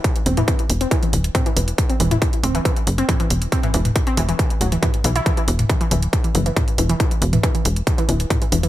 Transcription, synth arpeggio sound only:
\new Staff \with { instrumentName = "Synth arpeggio sound" } { \clef bass \time 4/4 \key c \lydian \tempo 4 = 138 r8 c'16 e16 e16 r8 c'16 e16 e16 r8 c'16 e16 e16 r16 | r16 c'16 e16 e16 r8 c'16 e16 e16 r8 c'16 e16 e16 r8 | c'16 e16 e16 r8 c'16 e16 e16 r8 fis16 e16 e16 r16 e16 e'16 | e16 e16 r8 e16 e16 e16 r8 e16 e16 e16 r8 e16 e16 |
e16 r8 e16 e16 e16 r8 e16 e16 e16 r8 e16 e16 e16 | }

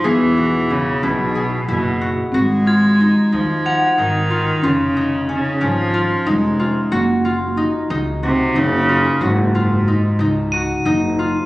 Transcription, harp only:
\new Staff \with { instrumentName = "Harp" } { \time 7/8 \key ges \lydian \tempo 4 = 92 gis'8 fis'8 e'8 e'8 gis'8 e'8 fis'8 | ges'8 f'8 ees'8 ees'8 ges''8 ees'8 f'8 | f'8 ees'8 des'8 des'8 f'8 ees'8 f'8 | ges'8 f'8 ees'8 ees'8 ges'8 ees'8 f'8 |
ges'8 f'8 ees'8 ees'8 ges'8 ees'8 f'8 | }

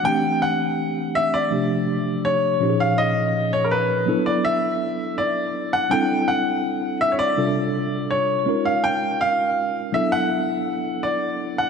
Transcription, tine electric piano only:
\new Staff \with { instrumentName = "Tine electric piano" } { \time 4/4 \key e \minor \tempo 4 = 82 <e a c' d' g'>2 <c f a d' g'>4. <bes, f des' ees' g' aes'>8~ | <bes, f des' ees' g' aes'>4. <fis b d' e' a'>2~ <fis b d' e' a'>8 | <g c' d' e' a'>2 <c g d' f' a'>4. <aes des' ees' f' bes'>8~ | <aes des' ees' f' bes'>4. <fis b d' e' a'>2~ <fis b d' e' a'>8 | }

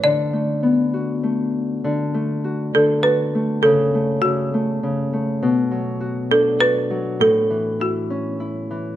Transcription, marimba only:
\new Staff \with { instrumentName = "Marimba" } { \time 3/4 \key d \major \tempo 4 = 100 d''2~ d''8 r8 | r4. a'8 b'4 | a'4 fis'4. r8 | r4. a'8 b'4 |
a'4 fis'4. r8 | }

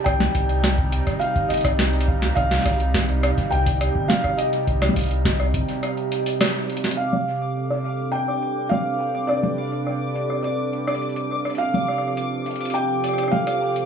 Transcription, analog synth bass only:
\new Staff \with { instrumentName = "Analog synth bass" } { \clef bass \time 4/4 \key c \minor \tempo 4 = 104 c,16 r16 c,4~ c,16 r8. g,,16 c,4~ c,16 | c,16 r16 c,4~ c,16 r16 c,8. g,,16 r4 | c,16 r16 c,4~ c,16 r2 r16 | r1 |
r1 | r1 | }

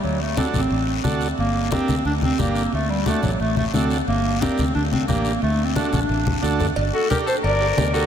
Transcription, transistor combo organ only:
\new Staff \with { instrumentName = "Transistor combo organ" } { \time 4/4 \key g \minor \tempo 4 = 178 r4 <d' fis' a'>8 r4. <d' fis' a'>8 r8 | r4 <d' g' bes'>8 r4. <d' g' bes'>8 r8 | r4 <d' fis' a'>8 r4. <d' fis' a'>8 r8 | r4 <d' g' bes'>8 r4. <d' g' bes'>8 r8 |
r4 <d' fis' a'>8 r4. <d' fis' a'>8 r8 | r4 <d' g' bes'>8 r4 <d' g' bes'>8 <d' g' bes'>8 <d' g' bes'>8 | }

